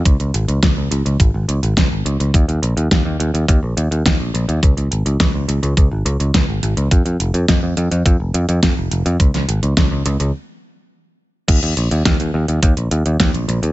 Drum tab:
CC |----------------|----------------|----------------|----------------|
HH |xxxxx-xxx-xxx-xx|xxxxx-xxx-xxx-xx|xxxxx-xxx-xxx-xx|xxxxx-xxx-xxx-xx|
SD |----o-------o---|----o-------o---|----o-------o---|----o-------o---|
BD |o---o---o---o---|o---o---o---o---|o---o---o---o---|o---o---o---o---|

CC |----------------|x---------------|
HH |xxxxx-xx--------|xxxxxx-xxxxxxxxx|
SD |-o--o-----------|----o-------o---|
BD |o---o-----------|o---o---o---o---|